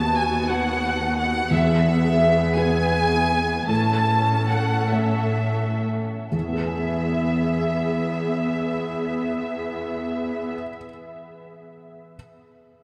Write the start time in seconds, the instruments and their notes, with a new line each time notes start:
Already playing: felt piano D#2, cello section D#2, viola section B3 F#4, violin section A5
0.16 violin section G#5
0.49 felt piano B3 F#4 B4, violin section F#5
1.18 violin section F#5
1.51 felt piano E2, cello section E2, viola section B3 G#4, violin section E5
2.57 felt piano B3 G#4 B4, violin section G#5
3.68 felt piano A2, cello section A2, viola section C#4 A4, violin section A5
4.50 violin section F#5
4.92 felt piano A3 A4 C#5, violin section E5
6.32 felt piano E2, cello section E2, viola section B3 G#4, violin section E5
6.39 felt piano E3
6.46 felt piano B3
6.53 felt piano G#4
6.60 felt piano B4
6.67 felt piano G#5